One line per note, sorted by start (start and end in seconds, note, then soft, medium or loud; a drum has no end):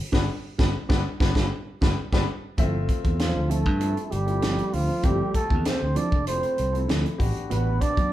0.12 0.25 G1 medium
0.12 0.23 G3 medium
0.12 0.23 B3 medium
0.12 0.23 D4 medium
0.12 0.23 F4 medium
0.12 0.23 G4 medium
0.12 kick medium
0.12 snare medium
0.58 0.70 G1 medium
0.58 0.69 G3 medium
0.58 0.69 B3 medium
0.58 0.69 D4 medium
0.58 0.68 F4 medium
0.58 0.68 G4 medium
0.58 kick medium
0.58 snare medium
0.89 1.01 G1 medium
0.89 0.99 G3 medium
0.89 0.99 B3 medium
0.89 0.99 D4 medium
0.89 0.99 D4 loud
0.89 0.99 F4 medium
0.89 0.99 G4 medium
0.89 kick medium
0.89 snare medium
1.20 1.32 G1 medium
1.20 1.31 G3 medium
1.20 1.30 B3 medium
1.20 1.30 D4 medium
1.20 1.30 F4 medium
1.20 1.30 G4 medium
1.20 kick medium
1.20 snare medium
1.35 1.47 G1 medium
1.35 1.46 G3 medium
1.35 1.46 B3 medium
1.35 1.45 D4 medium
1.35 1.46 D4 medium
1.35 1.45 F4 medium
1.35 1.46 G4 medium
1.35 kick medium
1.35 snare medium
1.81 1.93 G1 medium
1.81 1.92 G3 medium
1.81 1.92 B3 medium
1.81 1.91 D4 medium
1.81 1.92 D4 medium
1.81 1.91 F4 medium
1.81 1.92 G4 medium
1.81 kick medium
1.81 snare medium
2.12 2.24 G1 medium
2.12 2.23 G3 loud
2.12 2.23 B3 medium
2.12 2.22 D4 medium
2.12 2.23 D4 medium
2.12 2.22 F4 medium
2.12 2.22 G4 medium
2.12 kick medium
2.12 snare medium
2.58 2.85 G1 medium
2.58 2.77 F3 medium
2.58 3.75 A3 medium
2.58 2.77 C4 medium
2.58 3.75 C4 medium
2.58 2.77 E4 medium
2.58 3.74 F4 medium
2.58 2.77 A4 medium
2.58 3.75 E5 loud
2.58 kick medium
2.58 closed hi-hat medium
2.88 muted clean electric guitar stroke soft
2.88 kick medium
2.88 closed hi-hat medium
3.04 3.32 E2 medium
3.04 3.18 C4 soft
3.04 3.18 E4 soft
3.04 3.18 A4 soft
3.04 kick medium
3.04 closed hi-hat soft
3.19 3.51 F3 medium
3.19 3.52 F4 medium
3.19 muted clean electric guitar stroke soft
3.19 snare medium
3.19 closed hi-hat medium
3.35 3.66 D2 medium
3.35 muted clean electric guitar stroke soft
3.49 3.66 F3 medium
3.49 4.06 A3 medium
3.49 3.64 C4 medium
3.49 3.64 E4 medium
3.49 3.64 A4 medium
3.49 4.06 A4 medium
3.49 closed hi-hat medium
3.65 3.93 G2 medium
3.65 muted clean electric guitar stroke soft
3.65 kick medium
3.80 4.25 F3 medium
3.80 4.25 A3 soft
3.80 4.25 C4 medium
3.80 4.25 E4 medium
3.80 closed hi-hat medium
3.96 muted clean electric guitar stroke soft
3.96 closed hi-hat soft
4.06 4.13 A3 soft
4.06 4.13 A4 medium
4.11 4.39 G1 medium
4.11 4.76 G3 medium
4.11 4.75 G4 medium
4.11 muted clean electric guitar stroke soft
4.11 closed hi-hat soft
4.26 4.86 F3 medium
4.26 4.86 A3 medium
4.26 4.40 C4 soft
4.26 4.86 C4 soft
4.26 4.40 E4 soft
4.26 4.86 E4 medium
4.26 4.41 A4 soft
4.26 closed hi-hat soft
4.41 4.57 G1 medium
4.41 4.61 F3 medium
4.41 4.61 C4 medium
4.41 4.61 E4 medium
4.41 4.61 A4 medium
4.41 snare medium
4.41 closed hi-hat medium
4.59 closed hi-hat soft
4.73 4.88 D2 medium
4.73 5.07 F3 medium
4.73 5.06 F4 medium
4.73 muted clean electric guitar stroke soft
4.73 open hi-hat medium
4.88 5.02 F3 medium
4.88 5.03 A3 medium
4.88 5.03 C4 soft
4.88 5.04 F4 medium
4.88 muted clean electric guitar stroke soft
4.88 muted fingered electric bass stroke soft
5.03 5.18 G1 medium
5.03 5.22 F3 medium
5.03 6.20 F3 medium
5.03 5.36 G3 medium
5.03 6.20 A3 medium
5.03 5.22 C4 medium
5.03 6.21 C4 medium
5.03 5.22 E4 medium
5.03 5.35 G4 medium
5.03 6.21 G4 medium
5.03 5.23 A4 medium
5.03 kick medium
5.03 closed hi-hat medium
5.34 5.68 A3 medium
5.34 5.68 A4 medium
5.34 muted clean electric guitar stroke soft
5.34 muted fingered electric bass stroke soft
5.34 kick medium
5.34 closed hi-hat medium
5.50 5.64 E2 medium
5.50 5.64 C4 soft
5.50 5.64 E4 soft
5.50 5.64 A4 soft
5.50 kick medium
5.65 5.99 C4 medium
5.65 5.98 C5 medium
5.65 muted clean electric guitar stroke soft
5.65 snare medium
5.65 closed hi-hat medium
5.81 5.95 D2 medium
5.81 muted clean electric guitar stroke soft
5.95 6.12 F3 medium
5.95 6.11 C4 medium
5.95 6.28 D4 medium
5.95 6.11 E4 medium
5.95 6.11 A4 medium
5.95 6.27 D5 medium
5.95 muted fingered electric bass stroke soft
5.95 closed hi-hat medium
6.12 6.39 F1 medium
6.12 muted clean electric guitar stroke soft
6.12 kick medium
6.27 6.71 F3 medium
6.27 6.71 A3 medium
6.27 6.71 C4 medium
6.27 6.86 C4 medium
6.27 6.72 E4 medium
6.27 6.85 C5 medium
6.27 closed hi-hat medium
6.43 muted clean electric guitar stroke soft
6.43 closed hi-hat soft
6.58 6.86 C2 medium
6.58 muted clean electric guitar stroke soft
6.58 closed hi-hat soft
6.73 7.19 F3 medium
6.73 7.19 A3 medium
6.73 7.19 C4 soft
6.73 6.87 C4 soft
6.73 6.87 E4 soft
6.73 7.20 E4 medium
6.73 6.88 A4 soft
6.73 closed hi-hat soft
6.88 7.03 D2 medium
6.88 7.07 F3 medium
6.88 7.07 C4 medium
6.88 7.07 E4 medium
6.88 7.08 A4 medium
6.88 snare medium
6.88 closed hi-hat medium
7.06 closed hi-hat soft
7.18 7.34 A1 medium
7.18 8.13 B3 medium
7.18 8.13 D4 medium
7.18 8.13 F#4 medium
7.18 8.13 G4 medium
7.18 muted clean electric guitar stroke soft
7.18 kick medium
7.18 open hi-hat medium
7.36 muted clean electric guitar stroke soft
7.36 muted fingered electric bass stroke soft
7.36 closed hi-hat soft
7.50 7.78 A1 medium
7.50 7.69 G3 medium
7.50 7.69 B3 medium
7.50 7.84 B3 medium
7.50 7.69 D4 medium
7.50 7.69 F#4 medium
7.50 7.83 B4 medium
7.50 closed hi-hat medium
7.81 8.13 D4 medium
7.81 8.13 D5 medium
7.81 muted clean electric guitar stroke soft
7.81 kick medium
7.81 closed hi-hat medium
7.97 8.13 F#2 medium
7.97 8.11 B3 soft
7.97 8.11 D4 soft
7.97 8.11 F#4 soft
7.97 kick medium
7.97 closed hi-hat soft